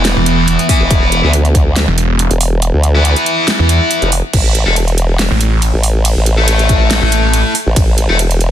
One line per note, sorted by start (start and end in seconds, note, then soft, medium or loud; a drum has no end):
0.00 0.15 E1 loud
0.00 0.67 E3 medium
0.00 4.29 E3 medium
0.00 4.29 A3 medium
0.00 0.67 B3 medium
0.00 4.29 B3 loud
0.00 0.67 E4 medium
0.05 snare loud
0.05 closed hi-hat medium
0.16 0.57 E1 loud
0.26 closed hi-hat medium
0.48 closed hi-hat medium
0.59 closed hi-hat soft
0.69 1.21 E3 medium
0.69 1.21 B3 medium
0.69 1.21 E4 medium
0.69 kick medium
0.69 open hi-hat medium
0.81 0.89 E1 loud
0.91 1.22 E1 loud
0.91 kick loud
0.91 closed hi-hat medium
1.12 closed hi-hat medium
1.23 1.86 D2 loud
1.23 1.31 E3 medium
1.23 1.31 B3 medium
1.23 1.31 E4 loud
1.33 closed hi-hat medium
1.45 closed hi-hat soft
1.55 kick medium
1.55 closed hi-hat medium
1.76 snare loud
1.76 closed hi-hat medium
1.88 2.29 E1 loud
1.98 closed hi-hat medium
2.19 closed hi-hat medium
2.31 2.72 E1 loud
2.31 closed hi-hat soft
2.41 open hi-hat loud
2.62 closed hi-hat medium
2.74 3.15 D2 loud
2.83 closed hi-hat medium
2.95 4.10 E3 medium
2.95 4.10 B3 medium
2.95 4.10 E4 loud
3.05 closed hi-hat medium
3.16 closed hi-hat soft
3.26 closed hi-hat medium
3.48 snare loud
3.48 closed hi-hat medium
3.59 3.79 E2 loud
3.69 closed hi-hat medium
3.91 closed hi-hat medium
4.02 4.22 F1 loud
4.02 closed hi-hat soft
4.12 open hi-hat loud
4.33 4.65 A1 loud
4.33 kick loud
4.33 closed hi-hat medium
4.33 ride medium
4.33 crash loud
4.55 closed hi-hat medium
4.66 5.29 E1 loud
4.66 4.74 A3 medium
4.66 4.74 E4 medium
4.66 4.74 A4 loud
4.76 closed hi-hat medium
4.76 ride soft
4.88 closed hi-hat soft
4.98 closed hi-hat medium
5.19 snare loud
5.19 closed hi-hat medium
5.19 ride medium
5.31 5.72 A1 loud
5.41 closed hi-hat medium
5.62 closed hi-hat medium
5.62 ride soft
5.74 6.15 A1 loud
5.83 open hi-hat loud
6.05 closed hi-hat medium
6.05 ride medium
6.16 7.00 A1 loud
6.26 closed hi-hat medium
6.37 7.53 A3 medium
6.37 7.53 E4 medium
6.37 7.52 A4 medium
6.48 closed hi-hat medium
6.48 ride soft
6.59 closed hi-hat soft
6.69 kick medium
6.69 closed hi-hat medium
6.91 snare loud
6.91 closed hi-hat medium
6.91 ride medium
7.02 7.43 A1 loud
7.12 closed hi-hat medium
7.33 closed hi-hat medium
7.33 ride soft
7.55 open hi-hat medium
7.66 7.75 A1 loud
7.76 8.07 A1 loud
7.76 kick loud
7.76 closed hi-hat medium
7.76 ride medium
7.98 closed hi-hat medium
8.09 8.51 E1 loud
8.09 8.16 A3 medium
8.09 8.16 E4 medium
8.09 8.16 A4 medium
8.19 closed hi-hat medium
8.19 ride soft
8.31 closed hi-hat soft
8.41 closed hi-hat medium